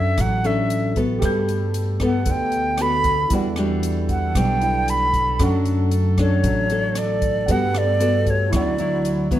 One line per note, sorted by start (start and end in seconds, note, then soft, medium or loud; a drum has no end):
0.00 0.14 F#2 loud
0.00 0.16 F#3 medium
0.00 0.18 C#4 medium
0.00 0.19 D4 medium
0.00 0.19 A4 medium
0.00 1.19 A4 soft
0.00 1.20 C#5 soft
0.00 0.22 E5 medium
0.00 1.20 F#5 soft
0.18 1.19 A1 medium
0.18 1.21 F#3 soft
0.18 0.48 F#5 medium
0.18 kick medium
0.18 cross-stick medium
0.18 closed hi-hat soft
0.44 0.93 C#4 medium
0.44 0.93 D4 medium
0.44 0.93 A4 medium
0.44 0.98 E5 medium
0.44 closed hi-hat soft
0.70 closed hi-hat soft
0.96 1.97 B3 medium
0.96 1.97 F#4 medium
0.96 1.97 A4 medium
0.96 kick medium
0.96 closed hi-hat soft
1.19 2.23 G2 loud
1.19 3.29 B2 medium
1.19 3.29 A3 medium
1.19 3.26 G4 medium
1.19 3.27 A4 medium
1.19 8.49 A4 medium
1.19 kick soft
1.19 cross-stick medium
1.19 closed hi-hat soft
1.23 2.25 G3 medium
1.23 3.28 B4 soft
1.23 3.29 G6 medium
1.49 closed hi-hat soft
1.74 closed hi-hat soft
2.00 2.76 B3 medium
2.00 2.76 A4 medium
2.00 kick soft
2.00 cross-stick soft
2.00 closed hi-hat soft
2.05 2.33 F#5 medium
2.26 3.27 D2 medium
2.26 3.29 D3 medium
2.26 kick medium
2.26 closed hi-hat soft
2.31 2.83 G5 medium
2.52 closed hi-hat soft
2.78 3.15 B3 medium
2.78 3.15 F#4 medium
2.78 3.15 A4 medium
2.78 cross-stick medium
2.78 closed hi-hat soft
2.82 3.33 B5 loud
3.04 kick medium
3.04 closed hi-hat soft
3.29 4.32 E2 loud
3.29 7.44 D3 medium
3.29 4.34 E3 medium
3.29 5.38 G3 medium
3.29 3.48 G3 medium
3.29 4.58 E4 soft
3.29 4.60 D5 soft
3.29 kick medium
3.29 closed hi-hat soft
3.33 3.48 D4 medium
3.33 3.48 F#4 medium
3.33 4.61 F#5 medium
3.56 4.32 G3 medium
3.56 4.33 D4 medium
3.56 4.33 F#4 medium
3.56 cross-stick medium
3.56 closed hi-hat soft
3.83 closed hi-hat soft
4.09 4.38 F#5 medium
4.09 kick soft
4.09 closed hi-hat soft
4.35 5.36 B1 medium
4.35 5.38 B2 soft
4.35 5.06 G3 medium
4.35 5.06 D4 medium
4.35 4.91 G5 medium
4.35 kick medium
4.35 cross-stick medium
4.35 closed hi-hat soft
4.61 5.40 E4 soft
4.61 5.41 D5 soft
4.61 5.41 G5 soft
4.61 closed hi-hat soft
4.88 5.41 B5 medium
4.88 closed hi-hat soft
5.14 kick medium
5.14 closed hi-hat soft
5.39 6.40 F#2 loud
5.39 6.42 F#3 medium
5.39 7.47 A3 medium
5.39 5.92 C#4 medium
5.39 5.92 D4 medium
5.39 7.44 A4 soft
5.39 5.92 A4 medium
5.39 7.45 C#6 soft
5.39 kick medium
5.39 cross-stick medium
5.39 closed hi-hat soft
5.43 7.45 F#5 medium
5.65 closed hi-hat soft
5.91 closed hi-hat soft
6.18 6.67 C#4 medium
6.18 6.67 D4 medium
6.18 6.67 A4 medium
6.18 6.99 C#5 medium
6.18 kick soft
6.18 cross-stick soft
6.18 closed hi-hat soft
6.44 7.44 A1 medium
6.44 7.46 F#3 soft
6.44 kick medium
6.44 closed hi-hat soft
6.70 7.45 D4 medium
6.70 7.45 A4 medium
6.70 closed hi-hat soft
6.95 7.53 D5 medium
6.95 cross-stick medium
6.95 closed hi-hat soft
7.22 kick medium
7.22 closed hi-hat soft
7.46 8.49 G2 loud
7.46 8.52 B2 medium
7.46 8.50 G3 medium
7.46 8.52 A3 medium
7.46 7.82 B3 medium
7.46 7.83 F#4 medium
7.46 8.51 A4 soft
7.46 7.83 A4 medium
7.46 8.52 B4 soft
7.46 8.50 F#5 soft
7.46 kick soft
7.46 closed hi-hat soft
7.51 8.53 G4 soft
7.51 7.79 F#5 loud
7.74 8.32 D5 medium
7.74 cross-stick medium
7.74 closed hi-hat soft
8.00 8.51 B3 medium
8.00 8.51 F#4 medium
8.00 8.51 A4 medium
8.00 closed hi-hat soft
8.26 8.54 C#5 medium
8.26 kick soft
8.26 closed hi-hat soft
8.50 9.40 D2 medium
8.50 9.40 D3 soft
8.50 9.40 F#3 medium
8.50 8.75 F#3 soft
8.50 8.75 C#4 medium
8.50 9.40 E4 soft
8.50 9.40 E4 medium
8.50 9.40 C#6 soft
8.50 kick medium
8.50 cross-stick medium
8.50 closed hi-hat soft
8.54 9.40 D4 soft
8.54 8.75 E4 medium
8.54 9.28 D5 medium
8.54 9.40 F#5 medium
8.78 9.27 F#3 medium
8.78 9.28 E4 medium
8.78 closed hi-hat soft
9.05 closed hi-hat soft
9.31 9.40 F#3 medium
9.31 9.40 B3 medium
9.31 9.40 E4 medium
9.31 kick medium
9.31 closed hi-hat soft